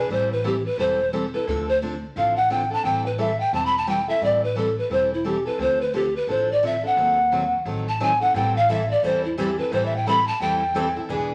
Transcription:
Already playing: steel-string acoustic guitar B3, pan flute B4
0.09 upright bass A1, steel-string acoustic guitar E3 G3 C4 E4 A4, pan flute C5
0.33 pan flute B4
0.44 steel-string acoustic guitar E3 G3 C4 E4 A4, pan flute G4
0.66 pan flute B4
0.78 upright bass E1, steel-string acoustic guitar E3 G3 C4 E4 A4, pan flute C5
1.13 steel-string acoustic guitar E3 G3 C4 E4 A4
1.34 steel-string acoustic guitar C4 E4 A4, pan flute B4
1.47 upright bass D2, steel-string acoustic guitar D3 F3 C4 D4 A4, pan flute A4
1.69 pan flute C5
1.82 steel-string acoustic guitar D3 F3 C4 D4 A4
2.16 upright bass A1, steel-string acoustic guitar D3 F3 C4 D4 A4, pan flute F5
2.36 pan flute F#5
2.50 steel-string acoustic guitar D3 F3 C4 D4 A4, pan flute G5
2.70 steel-string acoustic guitar C4 D4 A4, pan flute A5
2.84 upright bass A1, steel-string acoustic guitar E3 G3 C4 E4 A4, pan flute G5
3.06 pan flute B4
3.18 steel-string acoustic guitar E3 G3 C4 E4 A4, pan flute E5
3.40 pan flute G5
3.53 upright bass E1, steel-string acoustic guitar E3 G3 C4 E4 A4, pan flute A5
3.66 pan flute B5
3.78 pan flute A5
3.87 steel-string acoustic guitar E3 G3 C4 E4 A4, pan flute G5
4.08 steel-string acoustic guitar C4 E4 A4, pan flute E5
4.22 upright bass A1, steel-string acoustic guitar E3 G3 C4 E4 A4, pan flute D5
4.44 pan flute B4
4.56 steel-string acoustic guitar E3 G3 C4 E4 A4, pan flute A4
4.79 pan flute B4
4.90 upright bass E1, steel-string acoustic guitar E3 G3 C4 E4 A4, pan flute C5
5.14 pan flute E4
5.24 steel-string acoustic guitar E3 G3 C4 E4 A4, pan flute G4
5.46 steel-string acoustic guitar C4 E4 A4, pan flute B4
5.59 upright bass D2, steel-string acoustic guitar D3 F3 C4 D4 A4, pan flute C5
5.81 pan flute B4
5.93 steel-string acoustic guitar D3 F3 C4 D4 A4, pan flute G4
6.16 pan flute B4
6.27 upright bass A1, steel-string acoustic guitar D3 F3 C4 D4 A4, pan flute C5
6.52 pan flute D5
6.63 steel-string acoustic guitar D3 F3 C4 D4 A4, pan flute E5
6.83 steel-string acoustic guitar C4 D4 A4, pan flute F#5
6.97 upright bass D#2, steel-string acoustic guitar D#3 F#3 C4 D#4 A4
7.32 steel-string acoustic guitar D#3 F#3 C4 D#4 A4
7.65 upright bass A1, steel-string acoustic guitar D#3 F#3 C4 D#4 A4
7.89 pan flute A5
8.00 steel-string acoustic guitar D#3 F#3 C4 D#4 A4, pan flute G#5
8.21 steel-string acoustic guitar C4 D#4 A4, pan flute F#5
8.34 upright bass A1, steel-string acoustic guitar E3 G3 C4 E4 A4, pan flute G5
8.57 pan flute F5
8.69 steel-string acoustic guitar E3 G3 C4 E4 A4, pan flute E5
8.91 pan flute D5
9.03 upright bass E2, steel-string acoustic guitar E3 G3 C4 E4 A4, pan flute C5
9.25 pan flute E4
9.38 steel-string acoustic guitar E3 G3 C4 E4 A4, pan flute G4
9.58 steel-string acoustic guitar C4 E4 A4, pan flute B4
9.71 upright bass A1, steel-string acoustic guitar E3 G3 C4 E4 A4, pan flute C5
9.86 pan flute E5
9.96 pan flute G5
10.06 steel-string acoustic guitar E3 G3 C4 E4 A4, pan flute B5
10.28 pan flute A5
10.40 upright bass E2, steel-string acoustic guitar E3 G3 C4 E4 A4, pan flute G5
10.74 steel-string acoustic guitar E3 G3 C4 E4 A4
10.96 steel-string acoustic guitar C4 E4 A4
11.09 upright bass E1, steel-string acoustic guitar E3 B3 D4 G#4 B4

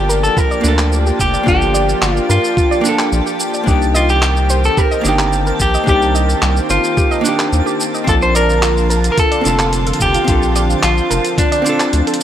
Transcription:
Already playing: analog synth bass G1, analog synth pad F3 A#3 D4 G4, hollow-body jazz guitar A#3 D4 F4 A4, clean electric guitar G4, synth texture A5
0.09 synth pluck A#4, shaker
0.23 clean electric guitar A4, shaker
0.37 synth pluck F4, clean electric guitar A#4, kick, shaker
0.51 synth pluck D5, shaker
0.61 analog synth bass D2, hollow-body jazz guitar A#3 D4, shaker
0.66 hollow-body jazz guitar F4 A4
0.78 synth pluck G5, clap, shaker
0.92 shaker
1.06 synth pluck G4, shaker
1.19 analog synth bass F1, clean electric guitar G4, kick, shaker
1.33 synth pluck D5, shaker
1.43 analog synth bass G1, hollow-body jazz guitar A#3 D4, synth pluck F4, kick
1.48 hollow-body jazz guitar F4 A4, clean electric guitar G4, shaker
1.61 shaker
1.74 synth pluck D5, shaker
1.89 shaker
2.02 analog synth bass G1, synth pluck F4, clap, shaker
2.10 clean electric guitar F4
2.17 shaker
2.29 analog synth bass G2, clean electric guitar F4, synth pluck A#4, shaker
2.44 shaker
2.57 synth pluck F4, kick, shaker
2.71 synth pluck D5, shaker
2.81 hollow-body jazz guitar A#3 D4, shaker
2.86 hollow-body jazz guitar F4 A4
2.98 synth pluck G5, clap, shaker
3.12 analog synth bass A#1, shaker
3.26 synth pluck G4, shaker
3.40 shaker
3.54 synth pluck D5, shaker
3.63 analog synth bass C2, analog synth pad D#3 A#3 C4, hollow-body jazz guitar A#3 D4, synth pluck G4, kick
3.67 hollow-body jazz guitar D#4 G4, shaker
3.82 shaker
3.94 clean electric guitar F4, synth pluck D#5, shaker
4.09 clean electric guitar G4, shaker
4.22 synth pluck G4, clap, shaker
4.37 shaker
4.50 synth pluck C5, shaker
4.64 clean electric guitar A4, shaker
4.77 synth pluck G4, clean electric guitar A#4, kick, shaker
4.91 synth pluck D#5, shaker
5.01 analog synth bass G1, hollow-body jazz guitar A#3 D4, shaker
5.06 hollow-body jazz guitar D#4 G4
5.18 synth pluck A#5, clap, shaker
5.32 shaker
5.47 synth pluck A#4, shaker
5.60 analog synth bass A#1, clean electric guitar G4, kick, shaker
5.74 synth pluck D#5, shaker
5.83 hollow-body jazz guitar A#3 D4, synth pluck G4, kick
5.88 analog synth bass C2, hollow-body jazz guitar D#4 G4, clean electric guitar G4, shaker
6.02 shaker
6.15 synth pluck D#5, shaker
6.29 shaker
6.42 analog synth bass C2, synth pluck G4, clap, shaker
6.56 shaker
6.70 analog synth bass G1, clean electric guitar F4, synth pluck C5, shaker
6.84 shaker
6.97 synth pluck G4, kick, shaker
7.11 synth pluck D#5, shaker
7.21 hollow-body jazz guitar A#3 D4
7.25 hollow-body jazz guitar D#4 G4, shaker
7.39 synth pluck G4, clap, shaker
7.52 analog synth bass D#2, shaker
7.66 synth pluck G4, shaker
7.80 shaker
7.94 synth pluck D#5, shaker
8.04 analog synth bass A#1, analog synth pad D3 F3 F4, hollow-body jazz guitar C4 D4, synth pluck F4, kick, closed hi-hat, shaker
8.09 hollow-body jazz guitar F4 A5, clean electric guitar A4
8.22 clean electric guitar C5, shaker
8.35 clean electric guitar A#4, synth pluck D5, closed hi-hat, shaker
8.49 shaker
8.62 synth pluck F4, clap, closed hi-hat, shaker
8.77 shaker
8.90 synth pluck A#4, closed hi-hat, shaker
9.04 closed hi-hat, shaker
9.12 clean electric guitar A#4
9.17 synth pluck F4, clean electric guitar A4, kick, closed hi-hat, shaker
9.31 synth pluck D5, closed hi-hat, shaker
9.41 hollow-body jazz guitar C4 D4, closed hi-hat
9.45 analog synth bass F1, hollow-body jazz guitar F4 A4, shaker
9.59 synth pluck A5, clap, closed hi-hat, shaker
9.73 closed hi-hat, shaker
9.87 synth pluck A4, closed hi-hat, shaker
9.93 closed hi-hat
10.00 analog synth bass F1, clean electric guitar G4, kick, shaker
10.14 synth pluck F4, closed hi-hat, shaker
10.24 analog synth bass A#1, hollow-body jazz guitar C4 D4, analog synth pad C4, synth pluck F4, kick, closed hi-hat, shaker
10.29 hollow-body jazz guitar F4 A4
10.42 shaker
10.56 synth pluck D5, closed hi-hat, shaker
10.70 shaker
10.83 analog synth bass A#1, synth pluck F4, clean electric guitar F4, clap, closed hi-hat, shaker
10.97 shaker
11.10 analog synth bass F1, synth pluck A#4, closed hi-hat, shaker
11.25 closed hi-hat, shaker
11.38 clean electric guitar D4, synth pluck F4, kick, closed hi-hat, shaker
11.52 synth pluck D5, closed hi-hat, shaker
11.62 hollow-body jazz guitar C4 D4, closed hi-hat
11.66 hollow-body jazz guitar F4 A4, shaker
11.79 synth pluck A5, clap, closed hi-hat, shaker
11.93 analog synth bass D2, closed hi-hat, shaker
12.07 synth pluck A4, closed hi-hat, shaker
12.14 closed hi-hat

